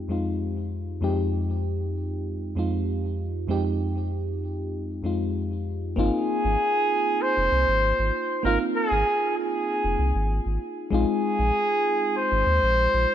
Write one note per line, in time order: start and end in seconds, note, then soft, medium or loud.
0.00 0.08 F2 medium
0.00 0.09 G#3 medium
0.00 0.10 C4 medium
0.00 0.11 D#4 medium
0.00 1.04 G4 medium
0.08 0.98 F2 medium
0.08 0.99 G#3 medium
0.08 0.99 C4 medium
0.08 1.00 D#4 medium
0.08 1.00 F4 medium
1.01 2.53 F2 medium
1.01 2.53 G#3 medium
1.01 2.54 C4 medium
1.01 2.54 D#4 medium
1.01 2.55 G4 loud
2.55 3.46 F2 medium
2.55 3.46 G#3 medium
2.55 3.46 C4 medium
2.55 3.47 D#4 medium
2.55 3.47 F4 medium
3.48 5.00 F2 medium
3.48 5.00 G#3 medium
3.48 5.01 C4 medium
3.48 5.01 D#4 medium
3.48 5.02 G4 loud
5.03 5.93 F2 medium
5.03 5.94 G#3 medium
5.03 5.94 C4 medium
5.03 5.94 D#4 medium
5.03 5.95 F4 medium
5.96 6.11 G#1 medium
5.96 7.48 A#3 loud
5.96 7.48 C4 medium
5.96 7.49 D#4 medium
5.96 7.50 F4 loud
5.96 7.23 G#4 loud
6.45 6.56 G#1 medium
7.22 8.44 C5 loud
7.37 7.49 F1 medium
7.52 7.65 C2 medium
7.68 7.93 G#1 loud
7.99 8.11 G#1 medium
8.43 8.58 G#1 medium
8.43 9.95 A#3 medium
8.43 9.96 C4 medium
8.43 9.96 D#4 medium
8.43 9.97 F4 loud
8.43 8.59 A#4 loud
8.77 9.34 G#4 loud
8.91 9.04 G#1 medium
9.37 10.57 G#4 medium
9.84 9.96 F1 medium
9.99 10.12 C2 medium
10.15 10.40 G#1 loud
10.46 10.58 G#1 medium
10.91 11.05 A#1 loud
10.91 12.43 G#3 medium
10.91 12.43 C4 medium
10.91 12.44 D#4 medium
10.91 12.45 F4 loud
10.91 12.13 G#4 loud
11.39 11.51 A#1 medium
12.17 13.15 C5 loud
12.32 12.44 G#1 medium
12.46 12.60 D#2 medium
12.63 12.88 A#1 loud
12.94 13.06 A#1 medium